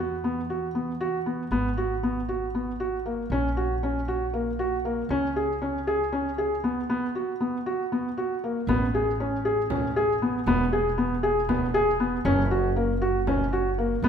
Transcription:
Already playing: upright bass E2
0.00 felt piano F#4
0.24 felt piano B3
0.50 felt piano F#4
0.75 felt piano B3
1.01 felt piano F#4
1.26 felt piano B3
1.51 upright bass G#1, felt piano B3
1.78 felt piano F#4
2.03 felt piano B3
2.29 felt piano F#4
2.55 felt piano B3
2.80 felt piano F#4
3.06 felt piano A#3
3.30 upright bass A#1, felt piano C#4
3.57 felt piano F#4
3.83 felt piano C#4
4.08 felt piano F#4
4.34 felt piano A#3
4.59 felt piano F#4
4.85 felt piano A#3
5.09 upright bass C#2, felt piano C#4
5.36 felt piano G#4
5.62 felt piano C#4
5.87 felt piano G#4
6.12 felt piano C#4
6.38 felt piano G#4
6.64 felt piano B3
6.90 felt piano B3
7.15 felt piano F#4
7.41 felt piano B3
7.66 felt piano F#4
7.92 felt piano B3
8.17 felt piano F#4
8.44 felt piano A#3
8.67 upright bass A1, felt piano B3, frame drum
8.94 felt piano G#4
9.20 felt piano C#4
9.45 felt piano G#4
9.70 felt piano C#4, frame drum
9.96 felt piano G#4
10.22 felt piano B3
10.46 upright bass E1, felt piano B3, frame drum
10.73 felt piano G#4
10.98 felt piano B3
11.23 felt piano G#4
11.49 felt piano B3, frame drum
11.74 felt piano G#4
12.00 felt piano B3
12.25 upright bass F#1, felt piano C#4, frame drum
12.51 felt piano F#4
12.76 felt piano A#3
13.02 felt piano F#4
13.27 felt piano C#4, frame drum
13.53 felt piano F#4
13.78 felt piano A#3
14.02 upright bass G#1, felt piano B3, frame drum

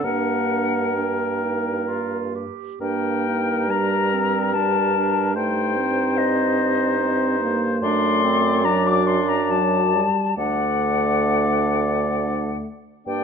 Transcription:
0.03 bassoon G2, french horn A#3, clarinet D4, oboe A#4, flute F#5
0.95 french horn A#3, clarinet D4, flute G5
1.42 clarinet D#4
1.88 clarinet F4
2.35 clarinet G4
2.81 bassoon G2, french horn A#3, clarinet D4, oboe A#4, flute G5
3.26 clarinet D#4
3.69 french horn G3, clarinet D4, flute A#5
4.13 clarinet C4
4.54 french horn G3, clarinet D4, flute A5
4.96 clarinet D4
5.35 french horn A3, clarinet D#4, oboe C5, flute G5
5.77 french horn C4
6.17 flute D#5
7.00 french horn C4
7.41 french horn A#3
7.81 bassoon F#2, french horn A3, clarinet D4, oboe D5, flute C6
8.23 clarinet C4
8.65 french horn F#3, clarinet D4, flute A#5
8.87 flute D6
9.07 flute C6
9.29 flute A#5
9.50 french horn F#3, flute A5
9.95 french horn G3
10.37 bassoon D2, french horn A3, clarinet D4, oboe D5, flute F#5
13.06 bassoon G2, french horn A#3, clarinet D4, oboe D5, flute G5

